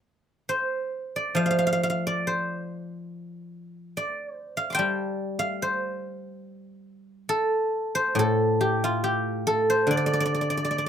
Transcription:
0.49 C5
1.16 D5
1.35 F3 F5
1.46 F5
1.51 F5
1.59 F5
1.67 F5
1.73 F5
1.83 F5
1.90 F5
2.07 D5
2.27 C5
3.97 D5
4.35 C5
4.57 F5
4.70 C6 D6
4.75 G5 A5
4.79 G3
5.39 F5
5.62 C5
7.29 A4
7.95 C5
8.15 A2
8.19 A4
8.61 G4
8.84 F4
9.04 G4
9.47 A4
9.70 C5
9.87 D3
9.91 D5
9.97 D5
10.06 D5
10.13 D5
10.20 D5
10.26 D5
10.35 D5
10.41 D5
10.50 D5
10.57 D5
10.65 D5
10.71 D5
10.78 D5

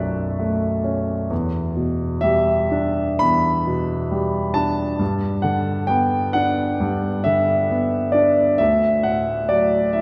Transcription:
Already playing: B1 F#2 A3 C#4 C#5 D5 E5 A5 C#6 F#6 B6
0.39 A3
0.84 C#4
1.30 E2
1.77 B2
2.21 G3 E5
2.71 D4
3.19 E2 B5
3.67 B2
4.11 G3
4.54 D4 A5
4.99 G2
5.42 D3 F#5
5.87 B3 G5
6.33 D4 F#5
6.80 G2
7.24 D3 E5
7.70 B3
8.12 D4 D5
8.58 D2 E5
9.03 A2 F#5
9.49 F#3 D5
9.93 E4 E5

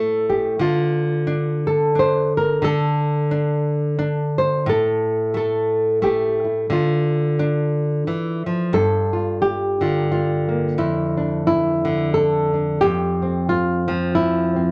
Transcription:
Already playing: A2 A3 E4 A4
0.30 G4
0.59 D3 F4
1.27 D4
1.67 A4
1.95 D4 C5
2.37 A#4
2.62 D3 A4
3.31 D4
3.99 D4
4.38 C5
4.66 A2 A4
5.34 A3 A4
6.02 A3 G4
6.44 E4
6.70 D3 F4
7.39 D4
8.07 E3
8.46 F3
8.73 G2 A4
9.13 F4
9.42 G4
9.81 D3 F4
10.12 F4
10.49 A#3
10.78 F2 E4
11.17 D4
11.47 E4
11.85 D3
12.14 A4
12.54 D4
12.81 F2 G4
13.22 C4
13.49 F4
13.88 F3 C4
14.15 E4
14.56 C4

